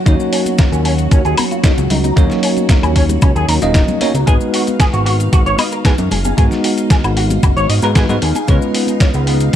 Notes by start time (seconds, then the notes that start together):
Already playing: F#3 F#4
0.06 D#2 A#3 C#4 D#4 F#4 C#5, kick, closed hi-hat, maracas
0.20 maracas
0.32 C#4, open hi-hat
0.46 closed hi-hat, high conga, maracas
0.58 D#4, kick, snare, closed hi-hat, maracas
0.72 D#2 C#4, closed hi-hat, maracas
0.85 C#4, open hi-hat
0.98 closed hi-hat, maracas
1.11 D#2 C#4, kick, closed hi-hat, maracas
1.25 D#2 G#4, closed hi-hat, maracas
1.37 A#4, open hi-hat, high conga, high woodblock
1.51 F4, closed hi-hat, maracas
1.63 A#3 C#4 D#4 F#4 C#5, kick, snare, closed hi-hat, maracas
1.77 C#2, closed hi-hat, muted conga, maracas
1.90 C#2 D#4, open hi-hat, low conga
2.04 D#4, closed hi-hat, high conga, maracas
2.16 D#2 F#3 A#3 C#4 D#4 C#5, kick, closed hi-hat, maracas
2.30 snare, maracas
2.43 C#4, open hi-hat
2.57 closed hi-hat, high conga, maracas
2.69 D#4, kick, snare, closed hi-hat, maracas
2.83 D#2 C#4, closed hi-hat, high woodblock, maracas
2.96 C#4, kick, open hi-hat
3.09 closed hi-hat, muted conga, low conga, maracas
3.22 C#2 C#4, kick, closed hi-hat, high woodblock, maracas
3.35 D#2 G#4, closed hi-hat, maracas
3.48 D#2 A#4, open hi-hat
3.62 D#1 F#3 A#3 C#4 D#4 F4 D#5, closed hi-hat, maracas
3.74 D#4, kick, snare, closed hi-hat, maracas
3.88 closed hi-hat, high conga, low conga, maracas
4.01 A#3 C#4 D#4 F#4 C#5, open hi-hat, high conga
4.14 C#2 D#4, closed hi-hat, muted conga, maracas
4.26 G#1 G#3 B3 D#4 F#4 G#4 B4 F5, kick, closed hi-hat, maracas
4.41 maracas
4.53 F#4, open hi-hat
4.67 closed hi-hat, high conga, maracas
4.80 G#4, kick, snare, closed hi-hat, maracas
4.93 G#1 F#4, closed hi-hat, maracas
5.05 F#4, open hi-hat
5.20 closed hi-hat, maracas
5.32 G#1 F#4, kick, closed hi-hat, maracas
5.46 G#1 C#5, closed hi-hat, maracas
5.58 D#5, open hi-hat, high conga, high woodblock
5.72 A#4, closed hi-hat, maracas
5.85 G#3 B3 D#4 F#4 G#4 B4, kick, snare, closed hi-hat, maracas
5.98 F#2, closed hi-hat, muted conga, maracas
6.11 F#1 G#4, open hi-hat, low conga
6.25 G#4, closed hi-hat, high conga, maracas
6.37 G#1 G#3 B3 D#4 F#4 G#4, kick, closed hi-hat, maracas
6.51 snare, maracas
6.64 F#4, open hi-hat
6.78 closed hi-hat, maracas
6.90 G#4, kick, snare, closed hi-hat, maracas
7.04 G#1 F#4, closed hi-hat, high woodblock, maracas
7.17 F#4, open hi-hat
7.30 closed hi-hat, muted conga, low conga, maracas
7.43 F#1 F#4, kick, closed hi-hat, high woodblock, maracas
7.56 G#1 C#5, closed hi-hat, maracas
7.69 G#1 D#5, open hi-hat
7.82 G#2 G#3 B3 D#4 F#4 A#4 B4, closed hi-hat, maracas
7.95 G#3 B3 D#4 F#4 G#4 B4, kick, snare, closed hi-hat, maracas
8.09 G#2 G#3 B3 D#4 F#4 B4, closed hi-hat, high conga, low conga, maracas
8.22 D#2 G#4, open hi-hat, high conga
8.35 G#4, closed hi-hat, muted conga, maracas
8.48 C#2 G#3 B3 C#4 F4 B4, kick, closed hi-hat, maracas
8.62 maracas
8.74 B3, open hi-hat
8.87 closed hi-hat, high conga, maracas
9.00 C#4, kick, snare, closed hi-hat, maracas
9.14 C#2 B3, closed hi-hat, maracas
9.27 B3, open hi-hat
9.40 closed hi-hat, maracas